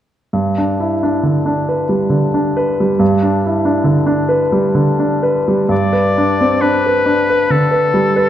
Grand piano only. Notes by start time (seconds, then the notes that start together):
0.33 G2
0.58 D4
0.80 E4
1.03 D4
1.23 D3
1.46 D4
1.69 B4
1.89 G3
2.10 D3
2.34 D4
2.57 B4
2.80 G3
2.99 G2
3.23 D4
3.46 E4
3.65 D4
3.84 D3
4.06 D4
4.29 B4
4.52 G3
4.75 D3
4.99 D4
5.23 B4
5.48 G3
5.69 G2
5.93 B4
6.18 D4
6.41 C4
6.62 D4
6.86 B4
7.06 D4
7.30 B4
7.50 D3
7.71 B4
7.94 G3
8.16 B4